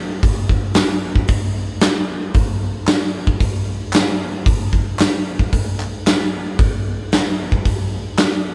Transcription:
0.23 kick, open hi-hat
0.49 kick
0.74 snare, clap, open hi-hat
1.16 kick
1.28 kick, open hi-hat
1.81 snare, clap, open hi-hat
2.34 kick, open hi-hat
2.87 snare, clap, open hi-hat
3.27 kick
3.40 kick, open hi-hat
3.93 snare, clap, open hi-hat
4.46 kick, open hi-hat
4.73 kick
4.99 snare, clap, open hi-hat
5.39 kick
5.53 kick, open hi-hat
5.80 clap
6.06 snare, clap, open hi-hat
6.59 kick, open hi-hat
7.12 snare, clap, open hi-hat
7.52 kick
7.66 kick, open hi-hat
8.18 snare, clap, open hi-hat

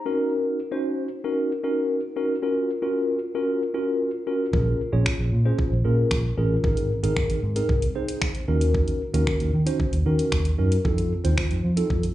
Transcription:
Already playing: A#5
0.06 C#4 D#4 F#4 A#4
0.71 C#4 D#4 F#4 C5
1.24 C#4 D#4 F#4 A#4
1.64 C#4 D#4 F#4 A#4
2.16 C#4 D#4 F#4 A#4
2.43 C#4 F4 F#4 A#4
2.82 C#4 F4 F#4 A#4
3.35 C#4 F4 F#4 A#4
3.74 C#4 F4 F#4 A#4
4.27 C#4 F4 F#4 A#4
4.53 A#1 C#4 F4 G#4 A#4, kick
4.93 A#1 C#4 F4 G#4 C#5
5.06 finger snap, kick
5.19 A#1
5.32 A#2
5.45 C#4 F4 G#4 C5
5.59 kick
5.72 A#1
5.85 A#2 C#4 F4 G#4 A#4
6.11 A#1, finger snap, kick
6.37 A1 C#4 F4 G#4 A#4
6.64 G#1 C4 D#4 G#4 A#4, kick
6.77 closed hi-hat
7.03 G#1 C4 D#4 G#4 A#4, closed hi-hat
7.17 finger snap, kick
7.30 G#1, closed hi-hat
7.43 G#2
7.56 C4 D#4 G#4 A#4, closed hi-hat
7.69 C2, kick
7.82 closed hi-hat
7.95 C4 D#4 G#4 C5
8.08 closed hi-hat
8.22 finger snap, kick
8.35 closed hi-hat
8.48 D#2 C#4 D#4 F#4 A#4
8.61 closed hi-hat
8.74 kick
8.88 closed hi-hat
9.14 D#2 C#4 D#4 F#4 A#4, closed hi-hat
9.27 finger snap, kick
9.40 D#2, closed hi-hat
9.53 D#3
9.66 C#4 D#4 F#4 C5, closed hi-hat
9.80 kick
9.93 D#2, closed hi-hat
10.06 D#3 C#4 D#4 F#4 A#4
10.19 closed hi-hat
10.32 D#2, finger snap, kick
10.45 closed hi-hat
10.58 F#2 C#4 D#4 F#4 A#4
10.72 closed hi-hat
10.85 F2 C4 D#4 F4 A4, kick
10.98 closed hi-hat
11.24 D#2 C4 D#4 F4 C5, closed hi-hat
11.38 finger snap, kick
11.51 F2, closed hi-hat
11.64 F3
11.77 C4 D#4 F4 A4, closed hi-hat
11.90 F2, kick
12.03 closed hi-hat

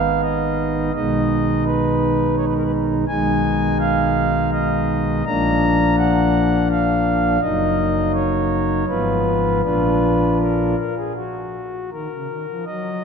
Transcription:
Already playing: G#1 G#2 D#3 B3 D#4 F5
0.22 D#5
0.94 B1 B2 D#3 G#3 D#4 D#5
1.66 B4
2.37 C#5
2.46 B4
2.54 A#4
2.63 B4
3.08 B1 B2 D#3 G#3 D#4 G#5
3.79 F5
4.52 D#5
5.26 A#1 A#2 F3 A#3 D4 A#5
5.98 F#5
6.71 F5
7.42 F#1 F#2 F#3 A#3 D#4 D#5
8.14 C#5
8.88 G#1 G#2 F3 B3 F4 B4
9.63 A#1 A#2 F3 D4 F4 B4
10.40 A#4
10.78 A#4
10.97 G#4
11.16 F#4
11.92 D#3 A#4
12.11 C#3
12.29 D#3
12.48 F3
12.66 F#3 D#5

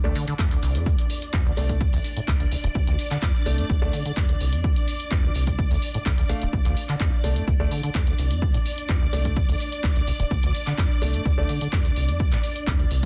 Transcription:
Already playing: D5
0.04 D2 A3 D4 D5, shaker
0.15 D3, open hi-hat, shaker
0.27 D3, closed hi-hat, shaker
0.39 F2, kick, clap, shaker
0.51 D2, closed hi-hat
0.63 C2, open hi-hat, shaker
0.75 F2, closed hi-hat, shaker
0.86 D2, kick, shaker
0.98 closed hi-hat, shaker
1.09 open hi-hat, shaker
1.22 closed hi-hat, shaker
1.33 F2, kick, clap, shaker
1.46 D2, shaker
1.56 C2 A3 D4 D5, open hi-hat, shaker
1.69 kick, closed hi-hat, shaker
1.81 D2, kick, shaker
1.93 D2, open hi-hat, shaker
2.04 open hi-hat, shaker
2.16 A2, closed hi-hat, shaker
2.28 D2, kick, clap, shaker
2.40 D2, closed hi-hat
2.51 C2, open hi-hat, shaker
2.64 D1, closed hi-hat, shaker
2.75 D2, kick, shaker
2.87 D2, closed hi-hat, shaker
2.99 open hi-hat, shaker
3.11 D3, clap, closed hi-hat, shaker
3.22 F2, kick, clap, shaker
3.35 shaker
3.45 C2 A3 D4 D5, open hi-hat, shaker
3.58 G2, closed hi-hat, shaker
3.70 D2, kick, shaker
3.82 D2 A3 D4 D5, shaker
3.93 D3, open hi-hat, shaker
4.06 D3, closed hi-hat, shaker
4.17 F2, kick, clap, shaker
4.29 D2, closed hi-hat
4.40 C2, open hi-hat, shaker
4.53 F2, closed hi-hat, shaker
4.64 D2, kick, shaker
4.76 closed hi-hat, shaker
4.87 open hi-hat, shaker
5.00 closed hi-hat, shaker
5.11 F2, kick, clap, shaker
5.24 D2, shaker
5.35 C2, open hi-hat, shaker
5.47 kick, closed hi-hat, shaker
5.59 D2, kick, shaker
5.71 D2, open hi-hat, shaker
5.82 open hi-hat, shaker
5.94 A2, closed hi-hat, shaker
6.06 D2, kick, clap, shaker
6.18 D2, closed hi-hat
6.29 C2 A3 D4 F5, open hi-hat, shaker
6.42 D1, closed hi-hat, shaker
6.53 D2 D5, kick, shaker
6.65 D2, closed hi-hat, shaker
6.76 open hi-hat, shaker
6.89 D3, clap, closed hi-hat, shaker
7.00 F2, kick, clap, shaker
7.12 shaker
7.24 C2 A3 D4 D5, open hi-hat, shaker
7.35 G2, closed hi-hat, shaker
7.48 D2, kick, shaker
7.60 D2 A3 D4 D5, shaker
7.71 D3, open hi-hat, shaker
7.83 D3, closed hi-hat, shaker
7.95 F2, kick, clap, shaker
8.07 D2, closed hi-hat
8.18 C2, open hi-hat, shaker
8.31 F2, closed hi-hat, shaker
8.41 D2, kick, shaker
8.54 A2, closed hi-hat, shaker
8.65 open hi-hat, shaker
8.77 closed hi-hat, shaker
8.89 F2, kick, clap, shaker
9.01 D2, shaker
9.13 C2 A3 D4 D5, open hi-hat, shaker
9.25 kick, closed hi-hat, shaker
9.36 D2, kick, shaker
9.48 D2, open hi-hat, shaker
9.60 open hi-hat, shaker
9.72 closed hi-hat, shaker
9.83 D2, kick, clap, shaker
9.96 D2, closed hi-hat
10.07 C2, open hi-hat, shaker
10.19 D1, closed hi-hat, shaker
10.31 D2, kick, shaker
10.43 D2, closed hi-hat, shaker
10.55 open hi-hat, shaker
10.67 D3, clap, closed hi-hat, shaker
10.78 F2, kick, clap, shaker
10.91 shaker
11.02 C2 A3 D4 D5, open hi-hat, shaker
11.14 G2, closed hi-hat, shaker
11.25 D2, kick, shaker
11.38 D2 A3 D4 D5, shaker
11.49 D3, open hi-hat, shaker
11.61 D3, closed hi-hat, shaker
11.73 F2, kick, clap, shaker
11.85 D2, closed hi-hat
11.96 C2, open hi-hat, shaker
12.09 F2, closed hi-hat, shaker
12.20 D2, kick, shaker
12.32 A2, clap, closed hi-hat, shaker
12.43 open hi-hat, shaker
12.55 closed hi-hat, shaker
12.67 F2, kick, clap, shaker
12.79 D2, closed hi-hat, shaker
12.90 C2, open hi-hat, shaker

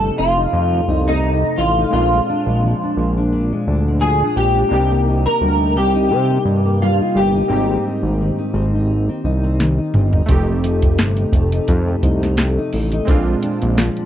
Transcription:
Already playing: G1 F2 C3 A3 C4 D#4 G4 A4
0.03 D#4
0.18 F1 A3 F4
0.37 D#4
0.53 F2
0.73 A3
0.88 C2 D#4
1.08 A3 D#4
1.23 C3
1.43 D#4
1.58 A1 A3 F4
1.78 D#4
1.90 A#1 A#2 G#3 C4 D4 F4
1.95 F4
2.13 G#3
2.29 D4
2.46 A#1 G#3
2.63 F3
2.83 D4
2.97 A#1 G#3
3.17 D4
3.33 A#2
3.53 G#3
3.67 D2 D4
3.88 G#3
4.01 F3 G#4
4.22 D4
4.36 A#1 G#3 G4
4.56 D4
4.69 C2 A#3 D4 D#4
4.73 C3 G4
4.91 A#3
5.07 D#4
5.26 A#3 A#4
5.41 D2 G3
5.60 D#4
5.76 C2 A#3 G4
5.95 D#4
6.11 C3
6.30 A#3
6.45 G2 D#4
6.66 A#3
6.82 G3 F4
7.01 D#4
7.15 G1 A#3 G4
7.35 D#4
7.48 G#1 G#2 A#3 C4 D#4
7.53 G4
7.70 C4
7.87 D#4
8.03 G#1 C4
8.21 D#3
8.38 D#4
8.54 G#1 C4
8.74 D#4
9.09 C4
9.24 C2 D#4
9.44 C4
9.60 D#3, snare
9.78 D#4
9.94 G1 C4, mid tom
10.13 D#4, floor tom
10.26 F1 F2 A3 C4 D#4, kick, closed hi-hat
10.31 G4
10.49 A3
10.64 D#4, closed hi-hat
10.82 A3, kick, closed hi-hat
10.98 G1 C3, snare, closed hi-hat
11.17 D#4, closed hi-hat
11.33 F1 A3, kick, closed hi-hat
11.52 D#4, closed hi-hat
11.68 F2, kick, closed hi-hat
11.88 A3
12.03 C2 D#4, kick, closed hi-hat
12.23 A3, snare, closed hi-hat
12.37 C3, snare, closed hi-hat
12.58 D#4
12.73 A1 A3, open hi-hat
12.92 D#4, closed hi-hat
13.05 A#1 G#3 C4 D4, kick, closed hi-hat
13.09 A#2 F4
13.28 G#3
13.43 D4, closed hi-hat
13.62 A#1 G#3, closed hi-hat
13.78 F3, snare, closed hi-hat
13.97 D4, closed hi-hat

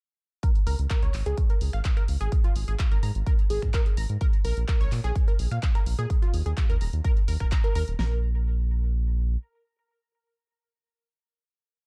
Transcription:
0.43 A#4, kick, closed hi-hat
0.55 closed hi-hat
0.67 C#2 A#4, open hi-hat
0.79 C#2, closed hi-hat
0.90 A#4, kick, clap, closed hi-hat
1.02 C#2 C#5, closed hi-hat
1.14 G#1, clap, open hi-hat
1.26 C#2 G#4, closed hi-hat
1.38 kick, closed hi-hat
1.50 A#4, closed hi-hat
1.61 C#2, open hi-hat
1.73 G#1 F5, finger snap, closed hi-hat
1.85 kick, clap, closed hi-hat
1.97 A#4, finger snap, closed hi-hat
2.08 C#2, open hi-hat
2.21 G#1 G#4, closed hi-hat
2.32 kick, closed hi-hat
2.44 F4, closed hi-hat
2.56 G#1, open hi-hat
2.68 G#1 G#4, closed hi-hat
2.79 kick, clap, closed hi-hat
2.91 G#1 A#4, closed hi-hat
3.03 G#2 A#5, open hi-hat
3.15 G#1, closed hi-hat
3.27 A#4, kick, closed hi-hat
3.39 closed hi-hat
3.50 G#1 G#4, open hi-hat
3.62 G#2, finger snap, kick, closed hi-hat
3.74 A#4, kick, clap, closed hi-hat
3.86 closed hi-hat
3.97 G#1 A#5, open hi-hat
4.10 G#2, closed hi-hat
4.21 A#4, kick, closed hi-hat
4.33 closed hi-hat
4.45 A#1 A#4, open hi-hat
4.57 A#1, closed hi-hat
4.68 A#4, kick, clap, closed hi-hat
4.80 A#1 C#5, closed hi-hat
4.92 A#2, clap, open hi-hat
5.04 A#1 G#4, closed hi-hat
5.16 kick, closed hi-hat
5.28 A#4, closed hi-hat
5.39 A#1, open hi-hat
5.51 A#2 F5, finger snap
5.63 kick, clap, closed hi-hat
5.75 A#4, finger snap, closed hi-hat
5.86 A#1, open hi-hat
5.99 A#2 G#4, closed hi-hat
6.10 kick, closed hi-hat
6.22 F4, closed hi-hat
6.34 D#2, open hi-hat
6.46 D#2 G#4, closed hi-hat
6.57 kick, clap, closed hi-hat
6.69 D#2 A#4, closed hi-hat
6.81 D#1 A#5, open hi-hat
6.93 D#2, closed hi-hat
7.04 A#4, kick, closed hi-hat
7.17 closed hi-hat
7.28 D#2 A#4, open hi-hat
7.40 D#1 A#4, finger snap, kick
7.52 A#5, kick, clap, closed hi-hat
7.64 A#4, closed hi-hat
7.75 D#2 A#4, open hi-hat
7.88 D#1, closed hi-hat
7.99 A#1 A#4, snare

